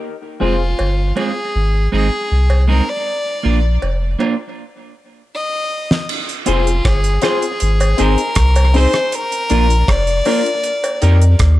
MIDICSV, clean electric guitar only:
0, 0, Header, 1, 2, 480
1, 0, Start_track
1, 0, Tempo, 757576
1, 18, Time_signature, 4, 2, 24, 8
1, 7347, End_track
2, 0, Start_track
2, 0, Title_t, "Clean electric guitar"
2, 0, Program_c, 0, 27
2, 253, Note_on_c, 0, 56, 74
2, 257, Note_on_c, 0, 60, 80
2, 261, Note_on_c, 0, 65, 78
2, 263, Note_on_c, 0, 68, 94
2, 346, Note_off_c, 0, 56, 0
2, 348, Note_off_c, 0, 60, 0
2, 350, Note_off_c, 0, 65, 0
2, 351, Note_off_c, 0, 68, 0
2, 732, Note_on_c, 0, 56, 81
2, 736, Note_on_c, 0, 60, 75
2, 740, Note_on_c, 0, 65, 89
2, 741, Note_on_c, 0, 68, 84
2, 826, Note_off_c, 0, 56, 0
2, 828, Note_off_c, 0, 60, 0
2, 830, Note_off_c, 0, 65, 0
2, 830, Note_off_c, 0, 68, 0
2, 1216, Note_on_c, 0, 56, 87
2, 1219, Note_on_c, 0, 60, 91
2, 1223, Note_on_c, 0, 63, 86
2, 1225, Note_on_c, 0, 68, 90
2, 1308, Note_off_c, 0, 56, 0
2, 1310, Note_off_c, 0, 60, 0
2, 1312, Note_off_c, 0, 63, 0
2, 1313, Note_off_c, 0, 68, 0
2, 1695, Note_on_c, 0, 56, 75
2, 1699, Note_on_c, 0, 60, 84
2, 1702, Note_on_c, 0, 63, 83
2, 1703, Note_on_c, 0, 68, 90
2, 1788, Note_off_c, 0, 56, 0
2, 1790, Note_off_c, 0, 60, 0
2, 1792, Note_off_c, 0, 63, 0
2, 1792, Note_off_c, 0, 68, 0
2, 2174, Note_on_c, 0, 58, 78
2, 2179, Note_on_c, 0, 62, 82
2, 2183, Note_on_c, 0, 65, 88
2, 2187, Note_on_c, 0, 70, 87
2, 2268, Note_off_c, 0, 58, 0
2, 2270, Note_off_c, 0, 62, 0
2, 2272, Note_off_c, 0, 65, 0
2, 2274, Note_off_c, 0, 70, 0
2, 2652, Note_on_c, 0, 58, 74
2, 2657, Note_on_c, 0, 62, 76
2, 2659, Note_on_c, 0, 65, 86
2, 2664, Note_on_c, 0, 70, 77
2, 2747, Note_off_c, 0, 58, 0
2, 2749, Note_off_c, 0, 62, 0
2, 2750, Note_off_c, 0, 65, 0
2, 2753, Note_off_c, 0, 70, 0
2, 4092, Note_on_c, 0, 60, 81
2, 4095, Note_on_c, 0, 65, 91
2, 4101, Note_on_c, 0, 68, 94
2, 4104, Note_on_c, 0, 72, 93
2, 4187, Note_off_c, 0, 60, 0
2, 4188, Note_off_c, 0, 65, 0
2, 4191, Note_off_c, 0, 68, 0
2, 4193, Note_off_c, 0, 72, 0
2, 4578, Note_on_c, 0, 60, 71
2, 4582, Note_on_c, 0, 65, 78
2, 4585, Note_on_c, 0, 68, 97
2, 4589, Note_on_c, 0, 72, 94
2, 4670, Note_off_c, 0, 60, 0
2, 4672, Note_off_c, 0, 65, 0
2, 4673, Note_off_c, 0, 68, 0
2, 4675, Note_off_c, 0, 72, 0
2, 5061, Note_on_c, 0, 60, 89
2, 5066, Note_on_c, 0, 63, 97
2, 5069, Note_on_c, 0, 68, 96
2, 5073, Note_on_c, 0, 72, 98
2, 5151, Note_off_c, 0, 60, 0
2, 5154, Note_off_c, 0, 63, 0
2, 5155, Note_off_c, 0, 68, 0
2, 5157, Note_off_c, 0, 72, 0
2, 5543, Note_on_c, 0, 60, 88
2, 5546, Note_on_c, 0, 63, 85
2, 5550, Note_on_c, 0, 68, 85
2, 5552, Note_on_c, 0, 72, 86
2, 5632, Note_off_c, 0, 60, 0
2, 5634, Note_off_c, 0, 63, 0
2, 5636, Note_off_c, 0, 68, 0
2, 5637, Note_off_c, 0, 72, 0
2, 6021, Note_on_c, 0, 58, 84
2, 6024, Note_on_c, 0, 62, 94
2, 6030, Note_on_c, 0, 65, 98
2, 6032, Note_on_c, 0, 70, 92
2, 6111, Note_off_c, 0, 58, 0
2, 6113, Note_off_c, 0, 62, 0
2, 6115, Note_off_c, 0, 65, 0
2, 6117, Note_off_c, 0, 70, 0
2, 6500, Note_on_c, 0, 58, 90
2, 6505, Note_on_c, 0, 62, 82
2, 6508, Note_on_c, 0, 65, 84
2, 6510, Note_on_c, 0, 70, 85
2, 6591, Note_off_c, 0, 58, 0
2, 6593, Note_off_c, 0, 62, 0
2, 6595, Note_off_c, 0, 65, 0
2, 6596, Note_off_c, 0, 70, 0
2, 6982, Note_on_c, 0, 58, 88
2, 6985, Note_on_c, 0, 63, 91
2, 6990, Note_on_c, 0, 67, 97
2, 6992, Note_on_c, 0, 70, 96
2, 7072, Note_off_c, 0, 58, 0
2, 7073, Note_off_c, 0, 63, 0
2, 7075, Note_off_c, 0, 67, 0
2, 7077, Note_off_c, 0, 70, 0
2, 7347, End_track
0, 0, End_of_file